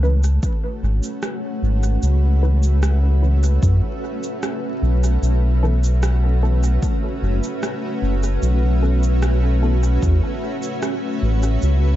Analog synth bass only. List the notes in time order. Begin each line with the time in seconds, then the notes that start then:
Already playing: C#2
0.83 G#1
1.62 G#1
2.03 C#2
3.63 F#2
4.82 B1
5.22 B1
7.22 F#1
8.02 F#1
8.42 B1
10.03 E2
11.22 A1
11.63 C#2